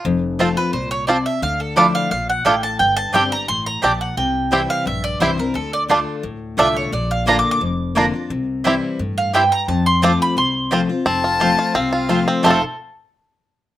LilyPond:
<<
  \new Staff \with { instrumentName = "Fiddle" } { \time 4/4 \key f \major \tempo 4 = 174 r1 | r1 | r1 | r1 |
r1 | r1 | r1 | r1 |
a''2 f''8 f''4. | a''8 r2. r8 | }
  \new Staff \with { instrumentName = "Mandolin" } { \time 4/4 \key f \major r4. b'8 c''8 des''8 d''8 e''8 | f''8 a'8 d''8 f''8 f''8 ges''8 g''8 a''8 | g''8 a''8 g''8 bes''8 c'''8 bes''8 a''8 ges''8 | g''4. f''8 e''8 d''8 c''8 bes'8 |
a'8 d''8 r2 e''8 des''8 | d''8 f''8 \tuplet 3/2 { bes''8 d'''8 d'''8~ } d'''4 r4 | r2 r8 f''8 g''8 bes''8 | a''8 c'''8 d'''8 b''8 c'''4 r4 |
r1 | c'''8 r2. r8 | }
  \new Staff \with { instrumentName = "Mandolin" } { \time 4/4 \key f \major r4 <c' f' c'' a''>16 r4. r16 <c' f' c'' a''>16 r8. | r4 <e' a' f'' d'''>16 r4. r16 <e' a' f'' d'''>16 r8. | r4 <c' g' d'' g''>16 r4. r16 <c' g' d'' g''>16 r8. | r4 <c' e' c'' g''>16 r4. r16 <c' e' c'' g''>16 r8. |
r4 <a f' d'' a''>16 r4. r16 <a f' d'' a''>16 r8. | r4 <bes f' d'' bes''>16 r4. r16 <bes f' d'' bes''>16 r8. | r4 <c' e' c'' g''>16 r4. r16 <c' e' c'' g''>16 r8. | r4 <c' f' c'' a''>16 r4. r16 <c' f' c'' a''>16 r8. |
r4 <c' f' c'' a''>16 r4. r16 <c' f' c'' a''>16 r8. | <c' f' c'' a''>8 r2. r8 | }
  \new Staff \with { instrumentName = "Five-string banjo" } { \time 4/4 \key f \major r4 <c' f'>8 r4. <c' f'>8 r8 | r4 <d' f'>8 r4. <d' f'>8 r8 | r4 <c' d' g'>8 r4. <c' d' g'>8 r8 | r4 <c' e' g'>8 r4. <c' e' g'>8 r8 |
r4 <d' f'>8 r4. <d' f'>8 r8 | r4 <bes d' f'>8 r4. <bes d' f'>8 r8 | r4 <c' e' g'>8 r4. <c' e' g'>8 r8 | r4 <c' f'>8 r4. <c' f'>8 r8 |
c'8 f'8 f'8 f'8 c'8 f'8 f'8 c'8 | <a c' f' a'>8 r2. r8 | }
  \new Staff \with { instrumentName = "Steel-string acoustic guitar" } { \time 4/4 \key f \major << { r4 <f a c' f'>8 <c' f'>8 r2 | r4 <f a d' e'>4 r2 | r4 <g c' d' g'>8 <d' g'>8 r2 | r4 <e g c' e'>4 r4 <e g c' e'>8 <c' e'>8 |
r4 <d a d' f'>4 r4 <d a d' f'>4 | r4 <d bes d' f'>4 r4 <d bes d' f'>8 <d' f'>8 | r4 <e g c' e'>4 r2 | r4 <f a c' f'>4 r4 <f a c' f'>8 <c' f'>8 |
r4 <f a c' f'>4 r4 <f a c' f'>4 | <f, c f a c' f'>8 r2. r8 | } \\ { f,2 bes,4 c4 | d2 bes,4 a,4 | g,2 a,4 bes,4 | c2 g,2 |
d2 a,2 | bes,2 f,2 | c2 a,4 g,4 | f,2 c2 |
f,2 c2 | r1 | } >> }
  \new Staff \with { instrumentName = "Upright bass" } { \clef bass \time 4/4 \key f \major f,,2 c,2 | d,2 bes,,4 a,,4 | g,,4 g,,4 a,,4 bes,,4 | c,2 bes,,4 c,4 |
d,2 d,4 c,4 | bes,,2 f,,2 | c,2 g,2 | f,2 c,2 |
f,,2 c,2 | f,,8 r2. r8 | }
>>